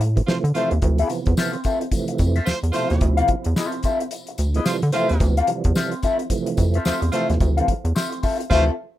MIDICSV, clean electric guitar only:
0, 0, Header, 1, 3, 480
1, 0, Start_track
1, 0, Tempo, 548446
1, 718, Time_signature, 4, 2, 24, 8
1, 7864, End_track
2, 0, Start_track
2, 0, Title_t, "Clean electric guitar"
2, 0, Program_c, 0, 27
2, 480, Note_on_c, 0, 60, 60
2, 485, Note_on_c, 0, 65, 62
2, 487, Note_on_c, 0, 69, 64
2, 493, Note_on_c, 0, 76, 71
2, 616, Note_off_c, 0, 76, 0
2, 622, Note_off_c, 0, 69, 0
2, 626, Note_off_c, 0, 65, 0
2, 646, Note_off_c, 0, 60, 0
2, 870, Note_on_c, 0, 77, 80
2, 872, Note_on_c, 0, 69, 90
2, 877, Note_on_c, 0, 60, 75
2, 878, Note_on_c, 0, 65, 72
2, 953, Note_off_c, 0, 60, 0
2, 956, Note_off_c, 0, 69, 0
2, 957, Note_off_c, 0, 65, 0
2, 965, Note_off_c, 0, 77, 0
2, 1206, Note_on_c, 0, 60, 95
2, 1211, Note_on_c, 0, 65, 99
2, 1213, Note_on_c, 0, 69, 107
2, 1213, Note_on_c, 0, 76, 101
2, 1335, Note_off_c, 0, 76, 0
2, 1337, Note_off_c, 0, 69, 0
2, 1341, Note_off_c, 0, 65, 0
2, 1402, Note_off_c, 0, 60, 0
2, 1441, Note_on_c, 0, 60, 79
2, 1443, Note_on_c, 0, 65, 73
2, 1447, Note_on_c, 0, 69, 83
2, 1451, Note_on_c, 0, 76, 69
2, 1579, Note_off_c, 0, 76, 0
2, 1583, Note_off_c, 0, 69, 0
2, 1584, Note_off_c, 0, 65, 0
2, 1606, Note_off_c, 0, 60, 0
2, 2063, Note_on_c, 0, 76, 89
2, 2069, Note_on_c, 0, 65, 76
2, 2069, Note_on_c, 0, 69, 87
2, 2075, Note_on_c, 0, 60, 64
2, 2149, Note_off_c, 0, 60, 0
2, 2151, Note_off_c, 0, 65, 0
2, 2155, Note_off_c, 0, 69, 0
2, 2156, Note_off_c, 0, 76, 0
2, 2397, Note_on_c, 0, 60, 72
2, 2403, Note_on_c, 0, 65, 79
2, 2406, Note_on_c, 0, 69, 68
2, 2406, Note_on_c, 0, 76, 65
2, 2528, Note_off_c, 0, 76, 0
2, 2534, Note_off_c, 0, 69, 0
2, 2536, Note_off_c, 0, 65, 0
2, 2564, Note_off_c, 0, 60, 0
2, 2775, Note_on_c, 0, 77, 92
2, 2782, Note_on_c, 0, 69, 82
2, 2786, Note_on_c, 0, 65, 72
2, 2787, Note_on_c, 0, 60, 71
2, 2866, Note_off_c, 0, 60, 0
2, 2868, Note_off_c, 0, 65, 0
2, 2870, Note_off_c, 0, 69, 0
2, 2881, Note_off_c, 0, 77, 0
2, 3121, Note_on_c, 0, 60, 81
2, 3124, Note_on_c, 0, 65, 88
2, 3128, Note_on_c, 0, 69, 94
2, 3129, Note_on_c, 0, 76, 97
2, 3259, Note_off_c, 0, 76, 0
2, 3261, Note_off_c, 0, 69, 0
2, 3266, Note_off_c, 0, 65, 0
2, 3319, Note_off_c, 0, 60, 0
2, 3363, Note_on_c, 0, 60, 78
2, 3366, Note_on_c, 0, 65, 71
2, 3368, Note_on_c, 0, 69, 71
2, 3373, Note_on_c, 0, 76, 81
2, 3502, Note_off_c, 0, 76, 0
2, 3506, Note_off_c, 0, 69, 0
2, 3508, Note_off_c, 0, 65, 0
2, 3528, Note_off_c, 0, 60, 0
2, 3990, Note_on_c, 0, 76, 96
2, 3996, Note_on_c, 0, 69, 76
2, 3997, Note_on_c, 0, 65, 81
2, 3999, Note_on_c, 0, 60, 73
2, 4075, Note_off_c, 0, 60, 0
2, 4080, Note_off_c, 0, 65, 0
2, 4082, Note_off_c, 0, 69, 0
2, 4084, Note_off_c, 0, 76, 0
2, 4318, Note_on_c, 0, 60, 65
2, 4323, Note_on_c, 0, 65, 65
2, 4326, Note_on_c, 0, 69, 62
2, 4329, Note_on_c, 0, 76, 75
2, 4456, Note_off_c, 0, 76, 0
2, 4462, Note_off_c, 0, 65, 0
2, 4462, Note_off_c, 0, 69, 0
2, 4485, Note_off_c, 0, 60, 0
2, 4704, Note_on_c, 0, 77, 84
2, 4710, Note_on_c, 0, 69, 85
2, 4712, Note_on_c, 0, 65, 69
2, 4715, Note_on_c, 0, 60, 71
2, 4795, Note_off_c, 0, 60, 0
2, 4798, Note_off_c, 0, 65, 0
2, 4800, Note_off_c, 0, 69, 0
2, 4809, Note_off_c, 0, 77, 0
2, 5040, Note_on_c, 0, 60, 82
2, 5042, Note_on_c, 0, 65, 98
2, 5047, Note_on_c, 0, 69, 87
2, 5052, Note_on_c, 0, 76, 88
2, 5172, Note_off_c, 0, 76, 0
2, 5178, Note_off_c, 0, 69, 0
2, 5182, Note_off_c, 0, 65, 0
2, 5239, Note_off_c, 0, 60, 0
2, 5282, Note_on_c, 0, 60, 70
2, 5285, Note_on_c, 0, 65, 80
2, 5289, Note_on_c, 0, 69, 80
2, 5289, Note_on_c, 0, 76, 86
2, 5415, Note_off_c, 0, 76, 0
2, 5420, Note_off_c, 0, 69, 0
2, 5422, Note_off_c, 0, 65, 0
2, 5447, Note_off_c, 0, 60, 0
2, 5911, Note_on_c, 0, 76, 87
2, 5912, Note_on_c, 0, 69, 86
2, 5920, Note_on_c, 0, 60, 62
2, 5920, Note_on_c, 0, 65, 87
2, 5992, Note_off_c, 0, 60, 0
2, 5999, Note_off_c, 0, 65, 0
2, 6002, Note_off_c, 0, 69, 0
2, 6003, Note_on_c, 0, 60, 92
2, 6004, Note_off_c, 0, 76, 0
2, 6010, Note_on_c, 0, 65, 109
2, 6013, Note_on_c, 0, 69, 104
2, 6014, Note_on_c, 0, 76, 118
2, 6138, Note_off_c, 0, 76, 0
2, 6140, Note_off_c, 0, 69, 0
2, 6144, Note_off_c, 0, 65, 0
2, 6201, Note_off_c, 0, 60, 0
2, 6245, Note_on_c, 0, 60, 76
2, 6248, Note_on_c, 0, 65, 65
2, 6253, Note_on_c, 0, 69, 65
2, 6255, Note_on_c, 0, 76, 71
2, 6380, Note_off_c, 0, 76, 0
2, 6385, Note_off_c, 0, 69, 0
2, 6390, Note_off_c, 0, 65, 0
2, 6409, Note_off_c, 0, 60, 0
2, 6626, Note_on_c, 0, 77, 75
2, 6629, Note_on_c, 0, 69, 71
2, 6632, Note_on_c, 0, 65, 74
2, 6637, Note_on_c, 0, 60, 72
2, 6717, Note_off_c, 0, 60, 0
2, 6719, Note_off_c, 0, 65, 0
2, 6722, Note_off_c, 0, 69, 0
2, 6732, Note_off_c, 0, 77, 0
2, 6961, Note_on_c, 0, 60, 81
2, 6964, Note_on_c, 0, 65, 78
2, 6969, Note_on_c, 0, 69, 98
2, 6970, Note_on_c, 0, 76, 84
2, 7095, Note_off_c, 0, 76, 0
2, 7100, Note_off_c, 0, 69, 0
2, 7104, Note_off_c, 0, 65, 0
2, 7160, Note_off_c, 0, 60, 0
2, 7199, Note_on_c, 0, 60, 69
2, 7204, Note_on_c, 0, 65, 76
2, 7206, Note_on_c, 0, 69, 80
2, 7211, Note_on_c, 0, 76, 76
2, 7336, Note_off_c, 0, 76, 0
2, 7343, Note_off_c, 0, 69, 0
2, 7345, Note_off_c, 0, 65, 0
2, 7366, Note_off_c, 0, 60, 0
2, 7442, Note_on_c, 0, 60, 101
2, 7446, Note_on_c, 0, 65, 107
2, 7451, Note_on_c, 0, 69, 112
2, 7454, Note_on_c, 0, 76, 106
2, 7613, Note_off_c, 0, 60, 0
2, 7615, Note_off_c, 0, 65, 0
2, 7618, Note_off_c, 0, 69, 0
2, 7620, Note_off_c, 0, 76, 0
2, 7864, End_track
3, 0, Start_track
3, 0, Title_t, "Muted clean electric guitar strokes"
3, 2, Note_on_c, 9, 29, 39
3, 90, Note_off_c, 9, 29, 0
3, 147, Note_on_c, 9, 29, 43
3, 235, Note_off_c, 9, 29, 0
3, 241, Note_on_c, 9, 29, 45
3, 329, Note_off_c, 9, 29, 0
3, 627, Note_on_c, 9, 29, 45
3, 714, Note_off_c, 9, 29, 0
3, 724, Note_on_c, 9, 29, 32
3, 812, Note_off_c, 9, 29, 0
3, 964, Note_on_c, 9, 29, 47
3, 1051, Note_off_c, 9, 29, 0
3, 1108, Note_on_c, 9, 29, 46
3, 1196, Note_off_c, 9, 29, 0
3, 1346, Note_on_c, 9, 29, 45
3, 1433, Note_off_c, 9, 29, 0
3, 1589, Note_on_c, 9, 29, 52
3, 1676, Note_off_c, 9, 29, 0
3, 1676, Note_on_c, 9, 29, 55
3, 1764, Note_off_c, 9, 29, 0
3, 1825, Note_on_c, 9, 29, 57
3, 1913, Note_off_c, 9, 29, 0
3, 2159, Note_on_c, 9, 29, 53
3, 2247, Note_off_c, 9, 29, 0
3, 2538, Note_on_c, 9, 29, 47
3, 2626, Note_off_c, 9, 29, 0
3, 2638, Note_on_c, 9, 29, 45
3, 2725, Note_off_c, 9, 29, 0
3, 2877, Note_on_c, 9, 29, 44
3, 2964, Note_off_c, 9, 29, 0
3, 3023, Note_on_c, 9, 29, 52
3, 3111, Note_off_c, 9, 29, 0
3, 3269, Note_on_c, 9, 29, 45
3, 3357, Note_off_c, 9, 29, 0
3, 3513, Note_on_c, 9, 29, 48
3, 3600, Note_off_c, 9, 29, 0
3, 3600, Note_on_c, 9, 29, 42
3, 3688, Note_off_c, 9, 29, 0
3, 3750, Note_on_c, 9, 29, 50
3, 3838, Note_off_c, 9, 29, 0
3, 4085, Note_on_c, 9, 29, 44
3, 4173, Note_off_c, 9, 29, 0
3, 4467, Note_on_c, 9, 29, 46
3, 4554, Note_off_c, 9, 29, 0
3, 4562, Note_on_c, 9, 29, 36
3, 4650, Note_off_c, 9, 29, 0
3, 4806, Note_on_c, 9, 29, 51
3, 4893, Note_off_c, 9, 29, 0
3, 4949, Note_on_c, 9, 29, 56
3, 5036, Note_off_c, 9, 29, 0
3, 5183, Note_on_c, 9, 29, 48
3, 5270, Note_off_c, 9, 29, 0
3, 5426, Note_on_c, 9, 29, 46
3, 5513, Note_off_c, 9, 29, 0
3, 5522, Note_on_c, 9, 29, 51
3, 5609, Note_off_c, 9, 29, 0
3, 5670, Note_on_c, 9, 29, 51
3, 5757, Note_off_c, 9, 29, 0
3, 6148, Note_on_c, 9, 29, 46
3, 6236, Note_off_c, 9, 29, 0
3, 6391, Note_on_c, 9, 29, 47
3, 6478, Note_off_c, 9, 29, 0
3, 6485, Note_on_c, 9, 29, 31
3, 6572, Note_off_c, 9, 29, 0
3, 6728, Note_on_c, 9, 29, 42
3, 6815, Note_off_c, 9, 29, 0
3, 6872, Note_on_c, 9, 29, 43
3, 6960, Note_off_c, 9, 29, 0
3, 7106, Note_on_c, 9, 29, 41
3, 7193, Note_off_c, 9, 29, 0
3, 7347, Note_on_c, 9, 29, 42
3, 7434, Note_off_c, 9, 29, 0
3, 7864, End_track
0, 0, End_of_file